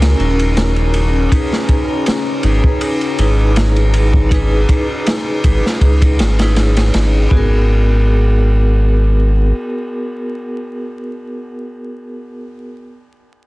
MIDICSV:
0, 0, Header, 1, 6, 480
1, 0, Start_track
1, 0, Key_signature, 5, "minor"
1, 0, Tempo, 750000
1, 842, Time_signature, 4, 2, 24, 8
1, 8619, End_track
2, 0, Start_track
2, 0, Title_t, "Ambient pad"
2, 0, Program_c, 0, 92
2, 0, Note_on_c, 0, 61, 89
2, 0, Note_on_c, 0, 82, 83
2, 4692, Note_off_c, 0, 61, 0
2, 4693, Note_off_c, 0, 82, 0
2, 8619, End_track
3, 0, Start_track
3, 0, Title_t, "Harp"
3, 0, Program_c, 1, 46
3, 0, Note_on_c, 1, 63, 84
3, 0, Note_on_c, 1, 68, 82
3, 119, Note_off_c, 1, 63, 0
3, 121, Note_on_c, 1, 63, 82
3, 356, Note_off_c, 1, 68, 0
3, 358, Note_on_c, 1, 68, 83
3, 597, Note_off_c, 1, 68, 0
3, 600, Note_on_c, 1, 68, 86
3, 838, Note_off_c, 1, 63, 0
3, 841, Note_on_c, 1, 63, 90
3, 1077, Note_off_c, 1, 68, 0
3, 1080, Note_on_c, 1, 68, 77
3, 1319, Note_off_c, 1, 68, 0
3, 1321, Note_on_c, 1, 68, 83
3, 1558, Note_off_c, 1, 63, 0
3, 1561, Note_on_c, 1, 63, 76
3, 1797, Note_off_c, 1, 68, 0
3, 1800, Note_on_c, 1, 68, 85
3, 2035, Note_off_c, 1, 68, 0
3, 2038, Note_on_c, 1, 68, 81
3, 2276, Note_off_c, 1, 63, 0
3, 2278, Note_on_c, 1, 63, 84
3, 2515, Note_off_c, 1, 68, 0
3, 2517, Note_on_c, 1, 68, 81
3, 2757, Note_off_c, 1, 68, 0
3, 2760, Note_on_c, 1, 68, 83
3, 2998, Note_off_c, 1, 63, 0
3, 3001, Note_on_c, 1, 63, 77
3, 3239, Note_off_c, 1, 68, 0
3, 3241, Note_on_c, 1, 68, 84
3, 3479, Note_off_c, 1, 68, 0
3, 3482, Note_on_c, 1, 68, 73
3, 3717, Note_off_c, 1, 63, 0
3, 3720, Note_on_c, 1, 63, 79
3, 3959, Note_off_c, 1, 68, 0
3, 3962, Note_on_c, 1, 68, 80
3, 4200, Note_off_c, 1, 68, 0
3, 4203, Note_on_c, 1, 68, 80
3, 4437, Note_off_c, 1, 63, 0
3, 4440, Note_on_c, 1, 63, 82
3, 4679, Note_off_c, 1, 68, 0
3, 4681, Note_on_c, 1, 68, 95
3, 6136, Note_off_c, 1, 68, 0
3, 6170, Note_off_c, 1, 63, 0
3, 8619, End_track
4, 0, Start_track
4, 0, Title_t, "Vibraphone"
4, 0, Program_c, 2, 11
4, 0, Control_c, 2, 64, 127
4, 0, Note_on_c, 2, 61, 77
4, 0, Note_on_c, 2, 66, 77
4, 0, Note_on_c, 2, 70, 87
4, 94, Note_off_c, 2, 61, 0
4, 100, Note_off_c, 2, 66, 0
4, 102, Note_off_c, 2, 70, 0
4, 120, Note_on_c, 2, 61, 92
4, 127, Note_on_c, 2, 64, 82
4, 131, Note_on_c, 2, 66, 78
4, 136, Note_on_c, 2, 70, 94
4, 300, Note_off_c, 2, 61, 0
4, 303, Note_off_c, 2, 64, 0
4, 305, Note_off_c, 2, 66, 0
4, 308, Note_off_c, 2, 70, 0
4, 828, Note_on_c, 2, 63, 107
4, 850, Note_on_c, 2, 68, 86
4, 851, Control_c, 2, 64, 0
4, 861, Note_on_c, 2, 71, 110
4, 951, Control_c, 2, 64, 127
4, 1528, Note_off_c, 2, 63, 0
4, 1539, Note_off_c, 2, 68, 0
4, 1544, Note_off_c, 2, 71, 0
4, 1558, Note_on_c, 2, 63, 86
4, 1570, Note_on_c, 2, 68, 77
4, 1575, Note_on_c, 2, 71, 88
4, 2013, Note_off_c, 2, 63, 0
4, 2019, Note_off_c, 2, 68, 0
4, 2021, Note_off_c, 2, 71, 0
4, 2039, Note_on_c, 2, 63, 92
4, 2044, Note_on_c, 2, 64, 83
4, 2048, Note_on_c, 2, 68, 87
4, 2054, Note_on_c, 2, 71, 99
4, 2219, Note_off_c, 2, 63, 0
4, 2221, Note_off_c, 2, 64, 0
4, 2224, Note_off_c, 2, 68, 0
4, 2226, Note_off_c, 2, 71, 0
4, 2748, Note_on_c, 2, 63, 97
4, 2772, Note_on_c, 2, 68, 93
4, 2782, Note_on_c, 2, 71, 114
4, 3448, Note_off_c, 2, 63, 0
4, 3460, Note_off_c, 2, 68, 0
4, 3465, Note_off_c, 2, 71, 0
4, 3479, Note_on_c, 2, 63, 84
4, 3491, Note_on_c, 2, 68, 76
4, 3495, Note_on_c, 2, 71, 93
4, 3933, Note_off_c, 2, 63, 0
4, 3939, Note_off_c, 2, 68, 0
4, 3941, Note_off_c, 2, 71, 0
4, 4088, Note_on_c, 2, 63, 101
4, 4096, Note_on_c, 2, 64, 88
4, 4101, Note_on_c, 2, 68, 89
4, 4108, Note_on_c, 2, 71, 113
4, 4174, Note_off_c, 2, 63, 0
4, 4178, Note_off_c, 2, 64, 0
4, 4180, Note_off_c, 2, 68, 0
4, 4183, Note_off_c, 2, 71, 0
4, 4201, Note_on_c, 2, 63, 81
4, 4212, Note_on_c, 2, 68, 73
4, 4217, Note_on_c, 2, 73, 88
4, 4655, Note_off_c, 2, 63, 0
4, 4660, Note_off_c, 2, 68, 0
4, 4663, Note_off_c, 2, 73, 0
4, 4665, Note_on_c, 2, 59, 93
4, 4685, Note_on_c, 2, 66, 86
4, 4690, Control_c, 2, 64, 0
4, 4699, Note_on_c, 2, 68, 77
4, 4717, Note_on_c, 2, 70, 100
4, 4787, Control_c, 2, 64, 127
4, 7528, Note_off_c, 2, 59, 0
4, 7537, Note_off_c, 2, 66, 0
4, 7545, Note_off_c, 2, 68, 0
4, 7554, Note_off_c, 2, 70, 0
4, 8210, Control_c, 2, 64, 0
4, 8619, End_track
5, 0, Start_track
5, 0, Title_t, "Analog synth bass"
5, 0, Program_c, 3, 38
5, 0, Note_on_c, 3, 37, 106
5, 95, Note_off_c, 3, 37, 0
5, 123, Note_on_c, 3, 27, 97
5, 821, Note_off_c, 3, 27, 0
5, 1561, Note_on_c, 3, 32, 101
5, 1674, Note_off_c, 3, 32, 0
5, 2041, Note_on_c, 3, 32, 87
5, 2980, Note_off_c, 3, 32, 0
5, 3482, Note_on_c, 3, 32, 101
5, 3595, Note_off_c, 3, 32, 0
5, 3720, Note_on_c, 3, 37, 101
5, 3964, Note_on_c, 3, 32, 112
5, 3974, Note_off_c, 3, 37, 0
5, 4421, Note_off_c, 3, 32, 0
5, 4445, Note_on_c, 3, 32, 92
5, 4656, Note_off_c, 3, 32, 0
5, 4679, Note_on_c, 3, 32, 97
5, 6095, Note_off_c, 3, 32, 0
5, 8619, End_track
6, 0, Start_track
6, 0, Title_t, "Drums"
6, 13, Note_on_c, 9, 51, 89
6, 14, Note_on_c, 9, 38, 100
6, 77, Note_off_c, 9, 51, 0
6, 78, Note_off_c, 9, 38, 0
6, 126, Note_on_c, 9, 51, 42
6, 190, Note_off_c, 9, 51, 0
6, 252, Note_on_c, 9, 51, 63
6, 316, Note_off_c, 9, 51, 0
6, 364, Note_on_c, 9, 51, 72
6, 367, Note_on_c, 9, 38, 105
6, 428, Note_off_c, 9, 51, 0
6, 431, Note_off_c, 9, 38, 0
6, 488, Note_on_c, 9, 51, 38
6, 552, Note_off_c, 9, 51, 0
6, 599, Note_on_c, 9, 51, 66
6, 663, Note_off_c, 9, 51, 0
6, 844, Note_on_c, 9, 36, 115
6, 846, Note_on_c, 9, 51, 90
6, 908, Note_off_c, 9, 36, 0
6, 910, Note_off_c, 9, 51, 0
6, 977, Note_on_c, 9, 38, 62
6, 1041, Note_off_c, 9, 38, 0
6, 1078, Note_on_c, 9, 51, 64
6, 1080, Note_on_c, 9, 36, 95
6, 1142, Note_off_c, 9, 51, 0
6, 1144, Note_off_c, 9, 36, 0
6, 1320, Note_on_c, 9, 51, 80
6, 1330, Note_on_c, 9, 38, 115
6, 1384, Note_off_c, 9, 51, 0
6, 1394, Note_off_c, 9, 38, 0
6, 1556, Note_on_c, 9, 51, 63
6, 1620, Note_off_c, 9, 51, 0
6, 1689, Note_on_c, 9, 36, 98
6, 1753, Note_off_c, 9, 36, 0
6, 1798, Note_on_c, 9, 51, 82
6, 1862, Note_off_c, 9, 51, 0
6, 1927, Note_on_c, 9, 51, 42
6, 1991, Note_off_c, 9, 51, 0
6, 2039, Note_on_c, 9, 51, 72
6, 2103, Note_off_c, 9, 51, 0
6, 2279, Note_on_c, 9, 51, 77
6, 2286, Note_on_c, 9, 38, 124
6, 2343, Note_off_c, 9, 51, 0
6, 2350, Note_off_c, 9, 38, 0
6, 2408, Note_on_c, 9, 51, 47
6, 2472, Note_off_c, 9, 51, 0
6, 2519, Note_on_c, 9, 51, 67
6, 2583, Note_off_c, 9, 51, 0
6, 2646, Note_on_c, 9, 36, 92
6, 2710, Note_off_c, 9, 36, 0
6, 2759, Note_on_c, 9, 36, 113
6, 2762, Note_on_c, 9, 51, 82
6, 2823, Note_off_c, 9, 36, 0
6, 2826, Note_off_c, 9, 51, 0
6, 3001, Note_on_c, 9, 36, 99
6, 3001, Note_on_c, 9, 51, 67
6, 3065, Note_off_c, 9, 36, 0
6, 3065, Note_off_c, 9, 51, 0
6, 3242, Note_on_c, 9, 51, 84
6, 3248, Note_on_c, 9, 38, 111
6, 3306, Note_off_c, 9, 51, 0
6, 3312, Note_off_c, 9, 38, 0
6, 3481, Note_on_c, 9, 51, 81
6, 3482, Note_on_c, 9, 36, 96
6, 3545, Note_off_c, 9, 51, 0
6, 3546, Note_off_c, 9, 36, 0
6, 3623, Note_on_c, 9, 38, 50
6, 3687, Note_off_c, 9, 38, 0
6, 3719, Note_on_c, 9, 36, 83
6, 3720, Note_on_c, 9, 51, 61
6, 3783, Note_off_c, 9, 36, 0
6, 3784, Note_off_c, 9, 51, 0
6, 3851, Note_on_c, 9, 36, 100
6, 3852, Note_on_c, 9, 51, 79
6, 3915, Note_off_c, 9, 36, 0
6, 3916, Note_off_c, 9, 51, 0
6, 3962, Note_on_c, 9, 51, 91
6, 3970, Note_on_c, 9, 38, 100
6, 4026, Note_off_c, 9, 51, 0
6, 4034, Note_off_c, 9, 38, 0
6, 4091, Note_on_c, 9, 51, 80
6, 4094, Note_on_c, 9, 38, 116
6, 4155, Note_off_c, 9, 51, 0
6, 4158, Note_off_c, 9, 38, 0
6, 4201, Note_on_c, 9, 51, 84
6, 4204, Note_on_c, 9, 38, 109
6, 4265, Note_off_c, 9, 51, 0
6, 4268, Note_off_c, 9, 38, 0
6, 4330, Note_on_c, 9, 51, 89
6, 4335, Note_on_c, 9, 38, 103
6, 4394, Note_off_c, 9, 51, 0
6, 4399, Note_off_c, 9, 38, 0
6, 4440, Note_on_c, 9, 51, 82
6, 4444, Note_on_c, 9, 38, 113
6, 4504, Note_off_c, 9, 51, 0
6, 4508, Note_off_c, 9, 38, 0
6, 4679, Note_on_c, 9, 36, 117
6, 4743, Note_off_c, 9, 36, 0
6, 8619, End_track
0, 0, End_of_file